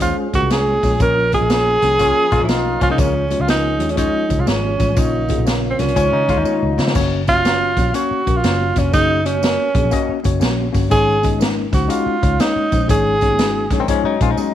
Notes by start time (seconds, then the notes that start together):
Already playing: D#2 G#3 C#4 G#4
0.00 G#3 C#4 F4 C5, kick, closed hi-hat, tambourine, muted conga
0.33 C#2 G#3 C#4 F4 F#4 A#4, kick, closed hi-hat, tambourine
0.42 C2
0.50 G#3 C#4 F4 G#4 C#5, snare, closed hi-hat, tambourine, high conga
0.68 high conga
0.83 A#1 G#3 C#4 F4 C#5, kick, snare, open hi-hat, tambourine, low conga
1.00 A#1 F3 A#3 C#4 F4 A#4 C#5, kick, closed hi-hat, tambourine, muted conga, low conga
1.32 A#3 C#4 F4 G#4 D#5, kick, closed hi-hat, tambourine, muted conga, high conga
1.41 A#1, high conga
1.50 A#3 C#4 F4 C#5, snare, closed hi-hat, tambourine, muted conga, high conga
1.82 C2 A#3 C#4 F4 C#5, snare, closed hi-hat, tambourine, muted conga, high conga, low conga
1.99 A#3 C#4 F4 C#5, kick, closed hi-hat, tambourine, muted conga
2.32 A#1 G#3 A#3 C#4 F4 D#5, kick, closed hi-hat, tambourine
2.40 G#1 F3 C#4
2.45 B1 A#3 C#4 D#4 E4, closed hi-hat
2.49 F4 D#5, snare, tambourine, muted conga, high conga
2.66 high conga
2.81 C2 F3 A#3 C#4 F4 C#5, kick, closed hi-hat, tambourine, muted conga, low conga
2.90 C#3 A#3 D#4
2.98 C#2 G#3 C#4 F4 G#4 C#5, kick, closed hi-hat, tambourine, low conga
3.30 G#3 C#4 F4 C#5, closed hi-hat, tambourine, muted conga, high conga
3.40 C#2 F4, high conga
3.46 G#3 C#4 D#4 F4 A#4, snare, closed hi-hat, tambourine, muted conga, high conga
3.78 D#2 G#3 C#4 F4 C#5, closed hi-hat, tambourine, muted conga, high conga, low conga
3.89 C#4, closed hi-hat
3.96 G#3 C#4 D#4 F4 C#5, kick, closed hi-hat, tambourine, muted conga
4.28 C#2 G#3 C#4 F4 C#5, kick, closed hi-hat, tambourine
4.39 C2 F4
4.45 G#1 G#3 C#4 F4 C#5, snare, closed hi-hat, tambourine, muted conga, high conga
4.64 high conga
4.78 A1 G#3 C#4 F4 C#5, kick, snare, closed hi-hat, tambourine, muted conga, low conga
4.95 A#1 C#3 A#3 C#4 D#4 F4 C#5, kick, closed hi-hat, tambourine, muted conga, low conga
5.28 A#3 C#4 F4 G#4, kick, closed hi-hat, tambourine, muted conga, high conga
5.38 A#1, high conga
5.44 A#3 C#4 F4 C#5, snare, closed hi-hat, tambourine, muted conga, high conga
5.70 C4
5.78 C2 A#3 C#4 F4 A#4, snare, closed hi-hat, tambourine, muted conga, high conga, low conga
5.88 closed hi-hat
5.95 C#2 D#3 F3 G#3 C#4 D#4 F4 C#5, kick, closed hi-hat, tambourine, muted conga
6.12 C#3 D#4
6.27 C#2 G#3 D#4 F4 C#5, kick, closed hi-hat, tambourine
6.37 D#2 D#4
6.44 G#3 D#4 F4 C#5, muted picked electric bass stroke, tambourine, muted conga, high conga
6.63 C#2, high conga
6.77 C#3 G#3 D#4 F4 C#5, snare, tambourine, muted conga, low conga
6.87 snare
6.94 F#1 A#3 C#4 F#4 C#5, kick, crash, tambourine, low conga
7.27 A#3 C#4 F4 F#4 C#5, kick, closed hi-hat, tambourine, high conga
7.37 high conga
7.44 A#3 C#4 F#4 C#5, snare, closed hi-hat, tambourine, muted conga, high conga
7.76 A#1 A#3 C#4 F#4 C#5, kick, snare, closed hi-hat, tambourine, muted conga, high conga, low conga
7.94 A#3 C#4 F#4 C#5, closed hi-hat, tambourine
8.11 muted picked electric bass stroke
8.26 A#1 A#3 C#4 F#4 A#4, kick, closed hi-hat, tambourine, muted conga
8.37 F4
8.43 F#1 A#3 C#4 F#4 C#5, snare, closed hi-hat, tambourine, muted conga, high conga
8.61 high conga
8.75 F1 A#3 C#4 F#4 C#5, kick, snare, closed hi-hat, tambourine, muted conga, low conga
8.92 F#1 A#3 C#4 D#4 F#4 G#4, kick, closed hi-hat, tambourine, muted conga, low conga
9.25 A#3 C#4 F#4 C#5, closed hi-hat, tambourine, high conga
9.34 high conga
9.41 A#3 C#4 F#4 A#4, snare, closed hi-hat, tambourine, high conga
9.74 A#1 A#3 C#4 F#4 G#4, kick, closed hi-hat, tambourine, high conga, low conga
9.84 A#1
9.91 A#3 C#4 F#4 D#5, kick, closed hi-hat, tambourine, muted conga
10.09 muted picked electric bass stroke
10.24 F#1 A#3 C#4 F#4 C#5, kick, closed hi-hat, tambourine, muted conga
10.40 A#1 A#3 C#4 F#4 C#5, snare, closed hi-hat, tambourine, muted conga, high conga
10.59 high conga
10.72 G1 A#3 C#4 F#4 C#5, kick, snare, open hi-hat, tambourine, muted conga, low conga
10.89 G#1 G#3 C#4 D#4 G#4 C#5, kick, closed hi-hat, tambourine, muted conga, low conga
11.22 G#3 C#4 D#4 D#5, kick, closed hi-hat, tambourine, muted conga, high conga
11.32 high conga
11.38 G#3 C#4 D#4 A#4, snare, closed hi-hat, tambourine, high conga
11.71 C#2 G#3 C#4 D#4 F#4 C5, kick, snare, closed hi-hat, tambourine, high conga, low conga
11.88 G#3 C#4 D#4 F4 F#4, closed hi-hat, tambourine
12.06 muted picked electric bass stroke
12.21 C#2 G#3 C#4 D#4 C#5, kick, closed hi-hat, tambourine, muted conga
12.39 G#3 C#4 D#4 C#5, snare, closed hi-hat, tambourine, muted conga, high conga
12.56 muted picked electric bass stroke, high conga
12.71 A#1 G#3 C#4 D#4 C5, kick, closed hi-hat, tambourine, low conga
12.88 G#1 G#3 C#4 D#4 G#4 C#5, kick, closed hi-hat, tambourine, muted conga, low conga
13.21 G#3 C#4 D#4 C#5, kick, closed hi-hat, tambourine, high conga
13.31 high conga
13.38 G#3 C#4 D#4 F#4, snare, closed hi-hat, tambourine, high conga
13.70 A#1 G#3 C#4 D#4 C#5 G#5, kick, snare, closed hi-hat, tambourine, muted conga, high conga, low conga
13.80 D#3 C4 A#5
13.88 F3 G#3 C#4 D#4 C#5 G#5, kick, closed hi-hat, tambourine
14.04 F#3 D#4, muted picked electric bass stroke
14.20 A#1 G#3 C#4 D#4 F4 C5 G#5, kick, closed hi-hat, tambourine
14.30 F#3 D#4
14.37 G#3 C#4 D#4 D#5, tambourine, high conga